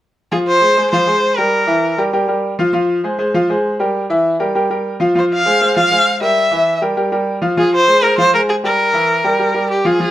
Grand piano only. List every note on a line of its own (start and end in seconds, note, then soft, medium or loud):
0.32 0.56 F3 medium
0.32 0.57 F4 medium
0.32 0.57 F5 medium
0.62 0.74 G#3 medium
0.62 0.74 G#4 medium
0.62 0.74 C5 medium
0.77 0.89 G#3 medium
0.77 0.89 G#4 medium
0.77 0.90 C5 medium
0.93 1.05 F3 medium
0.93 1.05 F4 medium
0.93 1.05 F5 medium
1.07 1.32 G#3 medium
1.07 1.32 G#4 medium
1.07 1.32 C5 medium
1.38 1.62 G3 medium
1.38 1.63 G4 medium
1.38 1.63 A#4 medium
1.67 1.92 E3 medium
1.67 1.92 E4 medium
1.67 1.92 E5 medium
1.98 2.10 G3 medium
1.98 2.10 G4 medium
1.98 2.10 A#4 medium
2.13 2.25 G3 medium
2.13 2.26 G4 medium
2.13 2.26 A#4 medium
2.28 2.53 G3 medium
2.28 2.53 G4 medium
2.28 2.53 A#4 medium
2.59 2.71 F3 medium
2.59 2.71 F4 medium
2.59 2.71 F5 medium
2.73 2.98 F3 medium
2.73 2.98 F4 medium
2.73 2.98 F5 medium
3.04 3.16 G#3 medium
3.04 3.16 G#4 medium
3.04 3.17 C5 medium
3.19 3.31 G#3 medium
3.19 3.31 G#4 medium
3.19 3.31 C5 medium
3.34 3.46 F3 medium
3.34 3.47 F4 medium
3.34 3.47 F5 medium
3.49 3.74 G#3 medium
3.49 3.74 G#4 medium
3.49 3.74 C5 medium
3.79 4.04 G3 medium
3.79 4.04 G4 medium
3.79 4.05 A#4 medium
4.10 4.34 E3 medium
4.10 4.35 E4 medium
4.10 4.35 E5 medium
4.39 4.52 G3 medium
4.39 4.52 G4 medium
4.39 4.52 A#4 medium
4.55 4.67 G3 medium
4.55 4.67 G4 medium
4.55 4.68 A#4 medium
4.70 4.95 G3 medium
4.70 4.95 G4 medium
4.70 4.95 A#4 medium
5.00 5.12 F3 medium
5.00 5.13 F4 medium
5.00 5.13 F5 medium
5.15 5.40 F3 medium
5.15 5.40 F4 medium
5.15 5.40 F5 medium
5.46 5.58 G#3 medium
5.46 5.58 G#4 medium
5.46 5.58 C5 medium
5.61 5.73 G#3 medium
5.61 5.73 G#4 medium
5.61 5.74 C5 medium
5.76 5.89 F3 medium
5.76 5.89 F4 medium
5.76 5.89 F5 medium
5.92 6.16 G#3 medium
5.92 6.16 G#4 medium
5.92 6.16 C5 medium
6.21 6.46 G3 medium
6.21 6.46 G4 medium
6.21 6.46 A#4 medium
6.51 6.76 E3 medium
6.51 6.76 E4 medium
6.51 6.76 E5 medium
6.82 6.94 G3 medium
6.82 6.94 G4 medium
6.82 6.94 A#4 medium
6.97 7.09 G3 medium
6.97 7.09 G4 medium
6.97 7.09 A#4 medium
7.12 7.37 G3 medium
7.12 7.37 G4 medium
7.12 7.37 A#4 medium
7.42 7.54 F3 medium
7.42 7.54 F4 medium
7.42 7.55 F5 medium
7.57 7.82 F3 medium
7.57 7.82 F4 medium
7.57 7.82 F5 medium
7.87 8.00 G#3 medium
7.87 8.00 G#4 medium
7.87 8.00 C5 medium
8.03 8.15 G#3 medium
8.03 8.15 G#4 medium
8.03 8.15 C5 medium
8.18 8.30 F3 medium
8.18 8.31 F4 medium
8.18 8.31 F5 medium
8.33 8.58 G#3 medium
8.33 8.58 G#4 medium
8.33 8.58 C5 medium
8.64 8.88 G3 medium
8.64 8.88 G4 medium
8.64 8.89 A#4 medium
8.93 9.18 E3 medium
8.93 9.19 E4 medium
8.93 9.19 E5 medium
9.24 9.36 G3 medium
9.24 9.37 G4 medium
9.24 9.37 A#4 medium
9.39 9.52 G3 medium
9.39 9.52 G4 medium
9.39 9.52 A#4 medium
9.54 9.79 G3 medium
9.54 9.79 G4 medium
9.54 9.79 A#4 medium
9.85 9.97 F3 medium
9.85 9.97 F4 medium
9.85 9.97 F5 medium
10.00 10.11 F3 medium
10.00 10.11 F4 medium